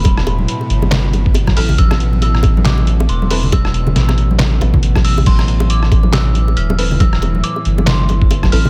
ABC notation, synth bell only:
X:1
M:4/4
L:1/8
Q:"Swing 16ths" 1/4=138
K:Am
V:1 name="Synth bell"
b4- b z2 f' | e'2 e'2 d'2 c'2 | e'4 z3 e' | c'2 d'2 e'2 f'2 |
e'2 d'2 c'3 f' |]